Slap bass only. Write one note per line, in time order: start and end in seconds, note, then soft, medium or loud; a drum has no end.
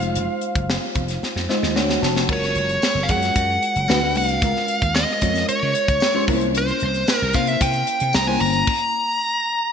0.00 0.10 F1 medium
0.16 0.26 F1 medium
0.55 0.76 F#1 medium
0.95 1.16 F1 medium
1.23 muted slap bass stroke soft
1.36 1.46 F2 medium
1.63 1.75 D#2 medium
1.75 1.96 D2 medium
2.02 2.23 F1 medium
2.29 2.50 F#1 medium
2.56 2.77 F#1 medium
2.95 3.11 F#1 loud
3.09 3.30 F#2 loud
3.36 3.57 F#2 medium
3.76 3.86 F#1 medium
3.89 4.16 D2 medium
4.16 4.37 C2 loud
4.42 4.53 C#2 medium
4.82 5.03 D#2 medium
5.22 5.43 F2 medium
5.49 muted slap bass stroke soft
5.63 5.73 C#3 medium
5.88 5.99 C#2 medium
6.28 6.70 C2 medium
6.82 7.03 C2 medium
7.22 7.32 C2 loud
7.34 7.56 C3 medium
7.61 7.82 C3 loud
8.01 8.12 C3 medium
8.15 8.36 C2 loud
8.41 8.62 G1 medium